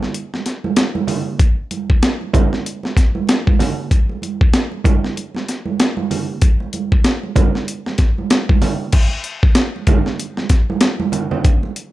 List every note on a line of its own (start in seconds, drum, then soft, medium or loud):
0.03 snare soft
0.14 closed hi-hat medium
0.34 snare soft
0.34 muted conga soft
0.46 snare soft
0.46 closed hi-hat medium
0.64 high conga medium
0.76 snare loud
0.76 closed hi-hat medium
0.76 muted conga soft
0.95 muted conga soft
0.95 high conga medium
1.07 open hi-hat medium
1.07 low conga medium
1.39 kick medium
1.39 closed hi-hat medium
1.71 closed hi-hat medium
1.71 high conga soft
1.90 kick medium
2.02 snare loud
2.02 closed hi-hat medium
2.02 muted conga soft
2.21 muted conga soft
2.33 kick medium
2.33 closed hi-hat medium
2.33 high conga medium
2.33 low conga loud
2.53 snare soft
2.66 closed hi-hat medium
2.83 snare soft
2.83 muted conga soft
2.97 kick medium
2.97 snare soft
2.97 closed hi-hat medium
3.15 high conga medium
3.27 snare loud
3.27 closed hi-hat loud
3.27 muted conga soft
3.47 kick medium
3.47 high conga medium
3.59 snare soft
3.59 open hi-hat medium
3.59 low conga medium
3.91 kick loud
3.91 closed hi-hat medium
3.91 muted conga soft
4.09 muted conga soft
4.22 closed hi-hat medium
4.22 high conga soft
4.41 kick loud
4.53 snare loud
4.53 closed hi-hat medium
4.71 muted conga soft
4.84 kick medium
4.84 closed hi-hat medium
4.84 high conga medium
4.84 low conga medium
5.04 snare soft
5.16 closed hi-hat medium
5.16 muted conga soft
5.35 snare soft
5.35 muted conga soft
5.49 snare soft
5.49 closed hi-hat medium
5.66 high conga medium
5.80 snare loud
5.80 closed hi-hat medium
5.97 muted conga soft
5.97 high conga medium
6.11 open hi-hat medium
6.11 low conga medium
6.42 kick loud
6.42 closed hi-hat medium
6.42 muted conga soft
6.60 muted conga soft
6.73 closed hi-hat medium
6.73 high conga soft
6.92 kick medium
7.04 snare loud
7.04 closed hi-hat medium
7.23 muted conga soft
7.36 kick medium
7.36 closed hi-hat medium
7.36 high conga medium
7.36 low conga medium
7.55 snare soft
7.68 closed hi-hat medium
7.86 snare soft
7.86 muted conga soft
7.98 kick loud
7.98 snare soft
7.98 closed hi-hat medium
8.18 high conga medium
8.30 snare loud
8.30 closed hi-hat medium
8.49 kick medium
8.49 muted conga soft
8.49 high conga medium
8.62 snare soft
8.62 open hi-hat medium
8.62 low conga medium
8.92 kick loud
8.92 closed hi-hat medium
8.92 crash loud
9.24 closed hi-hat medium
9.43 kick loud
9.55 snare loud
9.55 closed hi-hat medium
9.76 muted conga soft
9.87 kick medium
9.87 closed hi-hat medium
9.87 high conga medium
9.87 low conga loud
10.06 snare soft
10.19 closed hi-hat medium
10.19 muted conga soft
10.37 snare soft
10.37 muted conga soft
10.49 kick medium
10.49 snare soft
10.49 closed hi-hat medium
10.70 high conga medium
10.81 snare loud
10.81 closed hi-hat loud
10.81 muted conga soft
11.00 muted conga soft
11.00 high conga medium
11.12 closed hi-hat medium
11.12 low conga medium
11.31 low conga medium
11.44 kick medium
11.44 closed hi-hat medium
11.44 muted conga soft
11.63 muted conga soft
11.76 closed hi-hat medium